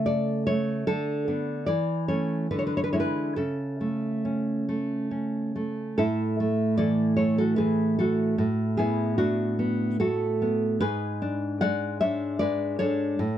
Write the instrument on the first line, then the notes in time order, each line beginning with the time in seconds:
nylon-string guitar
Already playing: C#3 A3
0.06 A4 D5
0.47 A3 C#5
0.87 D3 A4
1.28 B3 D4
1.66 E3 D5
2.08 A3 C#4 C#5
2.51 D3 B4
2.59 C#5
2.67 B4
2.77 C#5
2.84 B4
2.93 G#3 E4 C#5
3.00 B4
3.36 C#3 A4
3.81 A3
4.25 C#4
4.69 A3
5.11 C#4
5.56 A3
5.98 A2 E4 A4
6.40 A3
6.77 E3 A4 D5
7.17 A3 A4 C#5
7.38 F#4 A4
7.56 E3 G#4 B4
7.99 A3 F#4 A4
8.38 A2
8.77 B3 E4 G#4
9.18 A3 D4 F#4
9.59 B3
10.00 A3 F#4 A4
10.42 B3
10.80 G#2 G#4 B4
11.22 D4
11.61 G#3 D5 F#5
12.01 D4 C#5 E5
12.39 G#3 B4 D5
12.79 D4 A4 C#5
13.19 A2